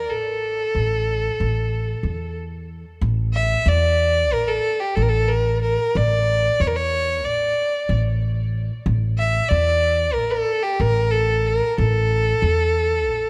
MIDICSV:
0, 0, Header, 1, 3, 480
1, 0, Start_track
1, 0, Tempo, 649351
1, 67, Time_signature, 9, 3, 24, 8
1, 9829, End_track
2, 0, Start_track
2, 0, Title_t, "Violin"
2, 0, Program_c, 0, 40
2, 0, Note_on_c, 0, 70, 72
2, 72, Note_on_c, 0, 69, 71
2, 83, Note_off_c, 0, 70, 0
2, 1752, Note_off_c, 0, 69, 0
2, 2466, Note_on_c, 0, 76, 84
2, 2724, Note_on_c, 0, 74, 98
2, 2735, Note_off_c, 0, 76, 0
2, 3200, Note_on_c, 0, 70, 87
2, 3211, Note_off_c, 0, 74, 0
2, 3313, Note_on_c, 0, 69, 85
2, 3324, Note_off_c, 0, 70, 0
2, 3546, Note_on_c, 0, 67, 75
2, 3557, Note_off_c, 0, 69, 0
2, 3661, Note_on_c, 0, 69, 83
2, 3672, Note_off_c, 0, 67, 0
2, 3713, Note_on_c, 0, 70, 67
2, 3724, Note_off_c, 0, 69, 0
2, 3761, Note_on_c, 0, 69, 83
2, 3772, Note_off_c, 0, 70, 0
2, 3907, Note_on_c, 0, 70, 82
2, 3918, Note_off_c, 0, 69, 0
2, 4149, Note_off_c, 0, 70, 0
2, 4152, Note_on_c, 0, 70, 82
2, 4413, Note_on_c, 0, 74, 93
2, 4424, Note_off_c, 0, 70, 0
2, 4885, Note_on_c, 0, 73, 84
2, 4896, Note_off_c, 0, 74, 0
2, 4930, Note_on_c, 0, 70, 74
2, 4941, Note_off_c, 0, 73, 0
2, 4998, Note_on_c, 0, 73, 88
2, 5009, Note_off_c, 0, 70, 0
2, 5358, Note_on_c, 0, 74, 75
2, 5369, Note_off_c, 0, 73, 0
2, 5893, Note_off_c, 0, 74, 0
2, 6788, Note_on_c, 0, 76, 92
2, 7010, Note_on_c, 0, 74, 99
2, 7021, Note_off_c, 0, 76, 0
2, 7490, Note_on_c, 0, 70, 84
2, 7501, Note_off_c, 0, 74, 0
2, 7618, Note_on_c, 0, 69, 86
2, 7629, Note_off_c, 0, 70, 0
2, 7853, Note_on_c, 0, 67, 78
2, 7864, Note_off_c, 0, 69, 0
2, 7988, Note_on_c, 0, 70, 88
2, 7999, Note_off_c, 0, 67, 0
2, 8208, Note_on_c, 0, 69, 82
2, 8219, Note_off_c, 0, 70, 0
2, 8470, Note_on_c, 0, 70, 83
2, 8481, Note_off_c, 0, 69, 0
2, 8703, Note_on_c, 0, 69, 81
2, 8714, Note_off_c, 0, 70, 0
2, 9829, Note_off_c, 0, 69, 0
2, 9829, End_track
3, 0, Start_track
3, 0, Title_t, "Upright bass"
3, 0, Program_c, 1, 32
3, 0, Note_on_c, 1, 40, 72
3, 74, Note_off_c, 1, 40, 0
3, 74, Note_on_c, 1, 33, 81
3, 461, Note_off_c, 1, 33, 0
3, 552, Note_on_c, 1, 33, 72
3, 940, Note_off_c, 1, 33, 0
3, 1035, Note_on_c, 1, 33, 77
3, 1422, Note_off_c, 1, 33, 0
3, 1502, Note_on_c, 1, 40, 72
3, 2089, Note_off_c, 1, 40, 0
3, 2228, Note_on_c, 1, 33, 90
3, 2618, Note_off_c, 1, 33, 0
3, 2704, Note_on_c, 1, 40, 88
3, 3190, Note_off_c, 1, 40, 0
3, 3190, Note_on_c, 1, 33, 83
3, 3385, Note_off_c, 1, 33, 0
3, 3671, Note_on_c, 1, 33, 89
3, 4254, Note_off_c, 1, 33, 0
3, 4401, Note_on_c, 1, 33, 93
3, 4785, Note_off_c, 1, 33, 0
3, 4878, Note_on_c, 1, 40, 86
3, 5359, Note_off_c, 1, 40, 0
3, 5359, Note_on_c, 1, 33, 87
3, 5549, Note_off_c, 1, 33, 0
3, 5833, Note_on_c, 1, 33, 89
3, 6414, Note_off_c, 1, 33, 0
3, 6548, Note_on_c, 1, 33, 96
3, 6937, Note_off_c, 1, 33, 0
3, 7028, Note_on_c, 1, 40, 89
3, 7506, Note_off_c, 1, 40, 0
3, 7506, Note_on_c, 1, 33, 90
3, 7701, Note_off_c, 1, 33, 0
3, 7981, Note_on_c, 1, 33, 88
3, 8567, Note_off_c, 1, 33, 0
3, 8709, Note_on_c, 1, 33, 88
3, 9097, Note_off_c, 1, 33, 0
3, 9183, Note_on_c, 1, 40, 91
3, 9667, Note_off_c, 1, 40, 0
3, 9667, Note_on_c, 1, 33, 85
3, 9829, Note_off_c, 1, 33, 0
3, 9829, End_track
0, 0, End_of_file